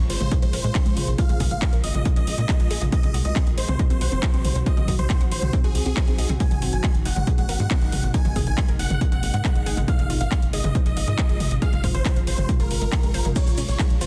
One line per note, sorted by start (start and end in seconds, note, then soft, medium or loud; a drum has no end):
0.00 impact medium
0.10 0.18 G#1 loud
0.10 0.15 F4 medium
0.10 0.32 C5 medium
0.10 open hi-hat loud
0.21 0.28 A#1 medium
0.21 0.24 G#3 medium
0.21 closed hi-hat medium
0.21 mid tom medium
0.31 0.37 G#4 loud
0.31 kick loud
0.31 closed hi-hat medium
0.42 0.50 A#1 medium
0.42 0.51 G#3 medium
0.42 1.10 C5 loud
0.42 closed hi-hat medium
0.53 0.61 A#1 loud
0.53 0.59 A#4 medium
0.53 open hi-hat loud
0.64 0.72 A#2 medium
0.64 0.67 G#3 medium
0.64 closed hi-hat medium
0.75 0.83 C#4 medium
0.75 kick loud
0.75 clap loud
0.75 closed hi-hat medium
0.86 0.94 A#1 medium
0.86 0.94 G#3 medium
0.86 closed hi-hat medium
0.97 1.04 A#1 loud
0.97 open hi-hat loud
0.97 mid tom medium
1.08 1.15 A#1 loud
1.08 closed hi-hat medium
1.18 1.24 F4 loud
1.18 1.41 F5 loud
1.18 kick loud
1.18 closed hi-hat medium
1.29 1.37 A#1 medium
1.29 1.38 G#3 medium
1.29 closed hi-hat medium
1.29 mid tom medium
1.40 1.48 A#1 loud
1.40 1.48 G#4 medium
1.40 kick medium
1.40 open hi-hat loud
1.51 1.59 A#1 medium
1.51 1.73 F5 loud
1.51 closed hi-hat medium
1.62 1.67 G#3 medium
1.62 kick loud
1.62 clap loud
1.62 closed hi-hat medium
1.73 1.81 A#1 medium
1.73 1.81 A#4 medium
1.73 closed hi-hat medium
1.84 1.91 G#1 loud
1.84 2.06 D#5 loud
1.84 open hi-hat loud
1.95 2.02 A#1 medium
1.95 closed hi-hat medium
1.95 mid tom medium
2.05 2.11 G#3 loud
2.05 kick loud
2.05 closed hi-hat medium
2.16 2.24 A#1 medium
2.16 2.24 C#4 medium
2.16 2.84 D#5 loud
2.16 closed hi-hat medium
2.27 2.35 A#1 loud
2.27 open hi-hat loud
2.38 2.46 A#2 medium
2.38 2.41 G#3 medium
2.38 closed hi-hat medium
2.49 2.54 F4 medium
2.49 kick loud
2.49 clap loud
2.49 closed hi-hat medium
2.60 2.68 A#1 medium
2.60 2.68 G#3 medium
2.60 closed hi-hat medium
2.71 2.78 A#1 loud
2.71 2.76 G#4 loud
2.71 open hi-hat loud
2.82 2.89 A#1 loud
2.82 2.90 G#3 medium
2.82 closed hi-hat medium
2.82 mid tom medium
2.92 3.01 C4 medium
2.92 3.15 D#5 loud
2.92 kick loud
2.92 closed hi-hat medium
3.03 3.11 C2 medium
3.03 closed hi-hat medium
3.03 mid tom medium
3.14 3.22 C2 loud
3.14 3.20 F#4 medium
3.14 open hi-hat loud
3.25 3.33 C2 medium
3.25 3.47 D#5 loud
3.25 closed hi-hat medium
3.36 3.41 C4 loud
3.36 kick loud
3.36 clap loud
3.36 closed hi-hat medium
3.47 3.55 C2 medium
3.47 closed hi-hat medium
3.58 3.65 A#1 loud
3.58 3.80 C5 medium
3.58 3.63 C5 medium
3.58 open hi-hat loud
3.68 3.76 C2 medium
3.68 3.72 C4 medium
3.68 closed hi-hat medium
3.68 mid tom medium
3.79 3.85 D#5 loud
3.79 kick loud
3.79 closed hi-hat medium
3.90 3.98 C2 medium
3.90 3.98 C4 medium
3.90 4.58 C5 loud
3.90 closed hi-hat medium
4.01 4.09 C2 loud
4.01 4.07 F#5 medium
4.01 open hi-hat loud
4.12 4.20 F#1 medium
4.12 4.15 C4 medium
4.12 closed hi-hat soft
4.23 4.31 F#4 medium
4.23 kick loud
4.23 clap loud
4.23 closed hi-hat medium
4.34 4.41 C2 medium
4.34 4.42 C4 medium
4.34 closed hi-hat medium
4.45 4.52 C2 loud
4.45 open hi-hat loud
4.45 mid tom medium
4.55 4.63 C2 medium
4.55 closed hi-hat medium
4.66 4.72 C5 loud
4.66 4.88 D#5 loud
4.66 kick loud
4.66 closed hi-hat medium
4.77 4.85 C2 medium
4.77 4.85 C4 medium
4.77 closed hi-hat medium
4.77 mid tom medium
4.88 4.96 C2 loud
4.88 4.96 D#5 medium
4.88 kick medium
4.88 open hi-hat loud
4.99 5.07 C2 medium
4.99 5.21 C5 loud
4.99 closed hi-hat medium
4.99 mid tom medium
5.10 5.15 C4 medium
5.10 kick loud
5.10 clap loud
5.10 closed hi-hat medium
5.21 5.28 C2 medium
5.21 5.29 F#5 medium
5.21 closed hi-hat medium
5.31 5.39 A#1 loud
5.31 5.54 C5 loud
5.31 open hi-hat loud
5.42 5.50 C2 medium
5.42 closed hi-hat medium
5.42 mid tom medium
5.53 5.59 C4 loud
5.53 kick loud
5.53 closed hi-hat medium
5.64 5.72 C2 medium
5.64 5.72 F#4 medium
5.64 6.32 G#4 loud
5.64 closed hi-hat soft
5.75 5.83 C#2 loud
5.75 open hi-hat loud
5.86 5.94 C2 medium
5.86 5.89 C4 medium
5.86 closed hi-hat soft
5.97 6.02 C5 medium
5.97 kick loud
5.97 clap loud
5.97 closed hi-hat medium
6.08 6.15 C2 medium
6.08 6.16 C4 medium
6.08 closed hi-hat medium
6.18 6.26 C2 loud
6.18 6.24 D#5 loud
6.18 open hi-hat loud
6.29 6.37 C2 loud
6.29 6.38 C4 medium
6.29 closed hi-hat medium
6.29 mid tom medium
6.40 6.48 G#3 medium
6.40 6.62 G#5 loud
6.40 kick loud
6.40 closed hi-hat medium
6.51 6.59 G#1 medium
6.51 closed hi-hat soft
6.51 mid tom medium
6.62 6.70 G#1 loud
6.62 6.67 C4 medium
6.62 open hi-hat loud
6.73 6.81 G#1 medium
6.73 6.95 G#5 medium
6.73 closed hi-hat medium
6.84 6.89 G#3 loud
6.84 kick loud
6.84 clap loud
6.84 closed hi-hat medium
6.95 7.02 G#1 medium
6.95 closed hi-hat medium
7.05 7.13 F#1 loud
7.05 7.11 D#4 medium
7.05 7.28 F#5 medium
7.05 open hi-hat loud
7.16 7.24 G#1 medium
7.16 7.20 G#3 medium
7.16 closed hi-hat medium
7.16 mid tom medium
7.27 7.33 G#4 loud
7.27 kick loud
7.27 closed hi-hat medium
7.38 7.46 G#1 medium
7.38 7.46 G#3 medium
7.38 8.05 F#5 loud
7.38 closed hi-hat medium
7.49 7.57 G#1 loud
7.49 7.54 A#4 medium
7.49 open hi-hat loud
7.60 7.68 G#2 medium
7.60 7.63 G#3 medium
7.60 closed hi-hat medium
7.71 7.79 C4 medium
7.71 kick loud
7.71 clap loud
7.71 closed hi-hat medium
7.81 7.89 G#1 medium
7.81 7.90 G#3 medium
7.81 closed hi-hat soft
7.92 8.00 G#1 loud
7.92 open hi-hat loud
7.92 mid tom medium
8.03 8.11 G#1 medium
8.03 closed hi-hat medium
8.14 8.20 D#4 loud
8.14 8.36 G#5 loud
8.14 kick loud
8.14 closed hi-hat medium
8.25 8.33 G#1 medium
8.25 8.33 G#3 medium
8.25 closed hi-hat medium
8.25 mid tom medium
8.36 8.44 G#1 loud
8.36 8.44 G#4 medium
8.36 kick medium
8.36 open hi-hat loud
8.47 8.55 G#1 medium
8.47 8.69 G#5 loud
8.47 closed hi-hat medium
8.58 8.63 G#3 medium
8.58 kick loud
8.58 clap loud
8.58 closed hi-hat medium
8.69 8.76 G#1 medium
8.69 8.77 A#4 medium
8.69 closed hi-hat medium
8.79 8.87 F#1 loud
8.79 9.02 F#5 medium
8.79 open hi-hat loud
8.90 8.98 G#1 medium
8.90 closed hi-hat medium
8.90 mid tom medium
9.01 9.07 G#3 loud
9.01 kick loud
9.01 closed hi-hat medium
9.12 9.20 G#1 medium
9.12 9.20 C4 medium
9.12 9.79 F#5 loud
9.12 closed hi-hat medium
9.23 9.31 G#1 loud
9.23 open hi-hat loud
9.34 9.41 G#2 medium
9.34 9.37 G#3 medium
9.34 closed hi-hat medium
9.45 9.50 D#4 medium
9.45 kick loud
9.45 clap loud
9.45 closed hi-hat medium
9.55 9.63 G#1 medium
9.55 9.64 G#3 medium
9.55 closed hi-hat medium
9.66 9.74 G#1 loud
9.66 9.72 G#4 loud
9.66 open hi-hat loud
9.77 9.85 G#1 loud
9.77 9.85 G#3 medium
9.77 closed hi-hat medium
9.77 mid tom medium
9.88 9.96 G#3 medium
9.88 10.10 F5 loud
9.88 kick loud
9.88 closed hi-hat medium
9.99 10.07 G#1 medium
9.99 closed hi-hat medium
9.99 mid tom medium
10.10 10.18 G#1 loud
10.10 10.15 F4 medium
10.10 open hi-hat loud
10.21 10.28 G#1 medium
10.21 10.43 F5 loud
10.21 closed hi-hat medium
10.32 10.37 G#3 loud
10.32 kick loud
10.32 clap loud
10.32 closed hi-hat medium
10.42 10.50 G#1 medium
10.42 closed hi-hat medium
10.53 10.61 G#1 loud
10.53 10.59 G#4 medium
10.53 10.75 D#5 loud
10.53 open hi-hat loud
10.64 10.72 G#1 medium
10.64 10.67 G#3 medium
10.64 closed hi-hat medium
10.64 mid tom medium
10.75 10.80 C5 loud
10.75 kick loud
10.75 closed hi-hat medium
10.86 10.94 G#1 medium
10.86 10.94 G#3 medium
10.86 11.53 D#5 loud
10.86 closed hi-hat medium
10.97 11.04 G#1 loud
10.97 11.02 F5 medium
10.97 open hi-hat loud
11.08 11.15 G#2 medium
11.08 11.11 G#3 medium
11.08 closed hi-hat medium
11.18 11.27 F4 medium
11.18 kick loud
11.18 clap loud
11.18 closed hi-hat medium
11.29 11.37 G#1 medium
11.29 11.38 G#3 medium
11.29 closed hi-hat medium
11.40 11.48 G#1 loud
11.40 open hi-hat loud
11.40 mid tom medium
11.51 11.59 G#1 medium
11.51 closed hi-hat medium
11.62 11.67 G#4 loud
11.62 11.84 F5 loud
11.62 kick loud
11.62 closed hi-hat medium
11.73 11.81 G#1 medium
11.73 11.81 G#3 medium
11.73 closed hi-hat medium
11.73 mid tom medium
11.84 11.91 G#1 loud
11.84 11.92 C5 medium
11.84 kick medium
11.84 open hi-hat loud
11.94 12.02 G#1 medium
11.94 12.17 C5 loud
11.94 closed hi-hat medium
11.94 mid tom medium
12.05 12.11 G#3 medium
12.05 kick loud
12.05 clap loud
12.05 closed hi-hat medium
12.16 12.24 G#1 medium
12.16 12.24 F5 medium
12.16 closed hi-hat medium
12.27 12.35 G#1 loud
12.27 12.49 C5 loud
12.27 open hi-hat loud
12.38 12.46 G#1 medium
12.38 mid tom medium
12.49 12.54 G#3 loud
12.49 kick loud
12.49 closed hi-hat medium
12.60 12.68 G#1 medium
12.60 12.68 F4 medium
12.60 13.27 A#4 loud
12.60 closed hi-hat medium
12.71 12.78 G#1 loud
12.71 open hi-hat loud
12.82 12.89 G#1 medium
12.82 12.85 G#3 medium
12.82 closed hi-hat medium
12.92 12.98 G#4 medium
12.92 kick loud
12.92 clap loud
12.92 closed hi-hat medium
13.03 13.11 G#1 medium
13.03 13.11 G#3 medium
13.03 closed hi-hat medium
13.14 13.22 G#1 loud
13.14 13.20 C5 loud
13.14 open hi-hat loud
13.25 13.33 G#1 medium
13.25 13.33 G#3 medium
13.25 closed hi-hat medium
13.25 mid tom medium
13.36 13.44 G#3 medium
13.36 13.58 C#5 loud
13.36 kick loud
13.36 closed hi-hat medium
13.36 crash medium
13.36 ride medium
13.36 shaker medium
13.47 13.55 A#1 medium
13.47 closed hi-hat medium
13.47 mid tom medium
13.47 shaker soft
13.58 13.65 A#1 loud
13.58 13.63 C#4 medium
13.58 open hi-hat loud
13.58 shaker loud
13.68 13.76 A#1 medium
13.68 13.91 C#5 medium
13.68 closed hi-hat medium
13.68 shaker soft
13.79 13.85 G#3 loud
13.79 kick loud
13.79 clap loud
13.79 closed hi-hat medium
13.79 ride medium
13.79 shaker medium
13.90 13.98 A#1 medium
13.90 closed hi-hat medium
14.01 14.06 G#1 loud
14.01 14.06 F4 medium
14.01 14.06 C5 loud
14.01 open hi-hat loud
14.01 shaker medium